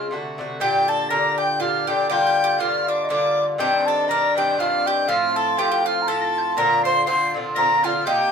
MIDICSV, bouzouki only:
0, 0, Header, 1, 2, 480
1, 0, Start_track
1, 0, Tempo, 497100
1, 590, Time_signature, 3, 2, 24, 8
1, 8032, End_track
2, 0, Start_track
2, 0, Title_t, "Bouzouki"
2, 0, Program_c, 0, 25
2, 0, Note_on_c, 0, 49, 56
2, 0, Note_on_c, 0, 56, 56
2, 0, Note_on_c, 0, 60, 55
2, 0, Note_on_c, 0, 65, 54
2, 100, Note_off_c, 0, 49, 0
2, 104, Note_on_c, 0, 48, 56
2, 110, Note_off_c, 0, 56, 0
2, 115, Note_off_c, 0, 60, 0
2, 117, Note_on_c, 0, 50, 63
2, 119, Note_off_c, 0, 65, 0
2, 123, Note_on_c, 0, 57, 61
2, 131, Note_on_c, 0, 66, 65
2, 356, Note_off_c, 0, 48, 0
2, 364, Note_off_c, 0, 50, 0
2, 367, Note_on_c, 0, 48, 61
2, 375, Note_on_c, 0, 50, 61
2, 376, Note_off_c, 0, 57, 0
2, 382, Note_off_c, 0, 66, 0
2, 387, Note_on_c, 0, 57, 57
2, 393, Note_on_c, 0, 66, 73
2, 575, Note_off_c, 0, 50, 0
2, 578, Note_off_c, 0, 48, 0
2, 582, Note_on_c, 0, 46, 72
2, 586, Note_on_c, 0, 50, 83
2, 592, Note_off_c, 0, 57, 0
2, 596, Note_off_c, 0, 66, 0
2, 596, Note_on_c, 0, 62, 85
2, 600, Note_on_c, 0, 67, 85
2, 1057, Note_off_c, 0, 46, 0
2, 1069, Note_on_c, 0, 46, 63
2, 1075, Note_off_c, 0, 50, 0
2, 1078, Note_on_c, 0, 50, 57
2, 1081, Note_off_c, 0, 62, 0
2, 1085, Note_on_c, 0, 62, 64
2, 1090, Note_off_c, 0, 67, 0
2, 1094, Note_on_c, 0, 67, 62
2, 1532, Note_off_c, 0, 46, 0
2, 1543, Note_on_c, 0, 46, 51
2, 1549, Note_off_c, 0, 50, 0
2, 1553, Note_on_c, 0, 50, 67
2, 1559, Note_off_c, 0, 62, 0
2, 1563, Note_on_c, 0, 62, 59
2, 1566, Note_off_c, 0, 67, 0
2, 1570, Note_on_c, 0, 67, 61
2, 1798, Note_off_c, 0, 46, 0
2, 1808, Note_off_c, 0, 50, 0
2, 1809, Note_on_c, 0, 46, 63
2, 1816, Note_off_c, 0, 62, 0
2, 1820, Note_on_c, 0, 50, 59
2, 1825, Note_off_c, 0, 67, 0
2, 1828, Note_on_c, 0, 62, 63
2, 1836, Note_on_c, 0, 67, 69
2, 2019, Note_off_c, 0, 46, 0
2, 2021, Note_off_c, 0, 50, 0
2, 2023, Note_on_c, 0, 43, 78
2, 2033, Note_on_c, 0, 50, 90
2, 2035, Note_off_c, 0, 62, 0
2, 2037, Note_off_c, 0, 67, 0
2, 2038, Note_on_c, 0, 58, 86
2, 2041, Note_on_c, 0, 65, 91
2, 2486, Note_off_c, 0, 43, 0
2, 2497, Note_on_c, 0, 43, 65
2, 2504, Note_off_c, 0, 58, 0
2, 2506, Note_off_c, 0, 50, 0
2, 2509, Note_on_c, 0, 50, 64
2, 2511, Note_off_c, 0, 65, 0
2, 2515, Note_on_c, 0, 58, 69
2, 2523, Note_on_c, 0, 65, 66
2, 2971, Note_off_c, 0, 43, 0
2, 2982, Note_on_c, 0, 43, 63
2, 2992, Note_off_c, 0, 50, 0
2, 2992, Note_off_c, 0, 58, 0
2, 2996, Note_off_c, 0, 65, 0
2, 2996, Note_on_c, 0, 50, 71
2, 3002, Note_on_c, 0, 58, 73
2, 3009, Note_on_c, 0, 65, 73
2, 3449, Note_off_c, 0, 43, 0
2, 3460, Note_on_c, 0, 43, 76
2, 3462, Note_off_c, 0, 50, 0
2, 3466, Note_on_c, 0, 51, 89
2, 3472, Note_off_c, 0, 58, 0
2, 3473, Note_off_c, 0, 65, 0
2, 3475, Note_on_c, 0, 60, 97
2, 3477, Note_on_c, 0, 62, 86
2, 3929, Note_off_c, 0, 43, 0
2, 3939, Note_off_c, 0, 51, 0
2, 3941, Note_on_c, 0, 43, 56
2, 3950, Note_on_c, 0, 51, 68
2, 3952, Note_off_c, 0, 62, 0
2, 3953, Note_off_c, 0, 60, 0
2, 3957, Note_on_c, 0, 60, 60
2, 3966, Note_on_c, 0, 62, 80
2, 4194, Note_off_c, 0, 43, 0
2, 4206, Note_off_c, 0, 51, 0
2, 4206, Note_on_c, 0, 43, 59
2, 4212, Note_off_c, 0, 60, 0
2, 4217, Note_on_c, 0, 51, 66
2, 4220, Note_off_c, 0, 62, 0
2, 4224, Note_on_c, 0, 60, 62
2, 4232, Note_on_c, 0, 62, 66
2, 4411, Note_off_c, 0, 43, 0
2, 4420, Note_off_c, 0, 51, 0
2, 4423, Note_on_c, 0, 43, 61
2, 4432, Note_off_c, 0, 60, 0
2, 4432, Note_on_c, 0, 51, 61
2, 4436, Note_off_c, 0, 62, 0
2, 4442, Note_on_c, 0, 60, 75
2, 4448, Note_on_c, 0, 62, 72
2, 4899, Note_off_c, 0, 43, 0
2, 4903, Note_on_c, 0, 45, 79
2, 4905, Note_off_c, 0, 51, 0
2, 4909, Note_on_c, 0, 53, 80
2, 4911, Note_off_c, 0, 60, 0
2, 4914, Note_on_c, 0, 60, 91
2, 4917, Note_off_c, 0, 62, 0
2, 4921, Note_on_c, 0, 65, 92
2, 5370, Note_off_c, 0, 45, 0
2, 5382, Note_on_c, 0, 45, 68
2, 5387, Note_off_c, 0, 53, 0
2, 5391, Note_on_c, 0, 53, 74
2, 5399, Note_off_c, 0, 60, 0
2, 5403, Note_on_c, 0, 60, 71
2, 5404, Note_off_c, 0, 65, 0
2, 5408, Note_on_c, 0, 65, 75
2, 5853, Note_off_c, 0, 45, 0
2, 5864, Note_on_c, 0, 45, 59
2, 5869, Note_off_c, 0, 53, 0
2, 5872, Note_on_c, 0, 53, 60
2, 5878, Note_off_c, 0, 60, 0
2, 5882, Note_on_c, 0, 60, 58
2, 5886, Note_off_c, 0, 65, 0
2, 5890, Note_on_c, 0, 65, 58
2, 6338, Note_off_c, 0, 45, 0
2, 6342, Note_on_c, 0, 46, 79
2, 6343, Note_off_c, 0, 53, 0
2, 6347, Note_on_c, 0, 50, 80
2, 6348, Note_off_c, 0, 65, 0
2, 6350, Note_off_c, 0, 60, 0
2, 6354, Note_on_c, 0, 60, 73
2, 6359, Note_on_c, 0, 65, 74
2, 6809, Note_off_c, 0, 46, 0
2, 6818, Note_off_c, 0, 50, 0
2, 6820, Note_on_c, 0, 46, 57
2, 6829, Note_on_c, 0, 50, 73
2, 6831, Note_off_c, 0, 60, 0
2, 6832, Note_off_c, 0, 65, 0
2, 6835, Note_on_c, 0, 60, 64
2, 6843, Note_on_c, 0, 65, 66
2, 7078, Note_off_c, 0, 46, 0
2, 7089, Note_on_c, 0, 46, 52
2, 7091, Note_off_c, 0, 50, 0
2, 7097, Note_off_c, 0, 60, 0
2, 7101, Note_off_c, 0, 65, 0
2, 7102, Note_on_c, 0, 50, 59
2, 7109, Note_on_c, 0, 60, 61
2, 7116, Note_on_c, 0, 65, 64
2, 7288, Note_off_c, 0, 46, 0
2, 7299, Note_on_c, 0, 46, 63
2, 7300, Note_off_c, 0, 50, 0
2, 7309, Note_off_c, 0, 60, 0
2, 7312, Note_on_c, 0, 50, 57
2, 7317, Note_off_c, 0, 65, 0
2, 7321, Note_on_c, 0, 60, 64
2, 7328, Note_on_c, 0, 65, 70
2, 7557, Note_off_c, 0, 46, 0
2, 7569, Note_on_c, 0, 46, 55
2, 7570, Note_off_c, 0, 50, 0
2, 7577, Note_off_c, 0, 60, 0
2, 7582, Note_on_c, 0, 50, 66
2, 7583, Note_off_c, 0, 65, 0
2, 7588, Note_on_c, 0, 60, 63
2, 7597, Note_on_c, 0, 65, 71
2, 7778, Note_off_c, 0, 46, 0
2, 7782, Note_on_c, 0, 48, 74
2, 7786, Note_off_c, 0, 50, 0
2, 7790, Note_on_c, 0, 58, 85
2, 7792, Note_off_c, 0, 60, 0
2, 7796, Note_on_c, 0, 63, 89
2, 7797, Note_off_c, 0, 65, 0
2, 7801, Note_on_c, 0, 67, 92
2, 8032, Note_off_c, 0, 48, 0
2, 8032, Note_off_c, 0, 58, 0
2, 8032, Note_off_c, 0, 63, 0
2, 8032, Note_off_c, 0, 67, 0
2, 8032, End_track
0, 0, End_of_file